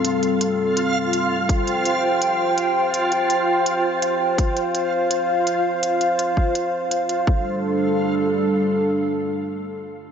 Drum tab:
HH |xxx-x-x-|xxx-x-x-|xxx-x-x-|xxx-x-x-|
BD |--------|o-------|--------|o-------|

HH |xxx-x-xx|--------|--------|
BD |---o----|o-------|--------|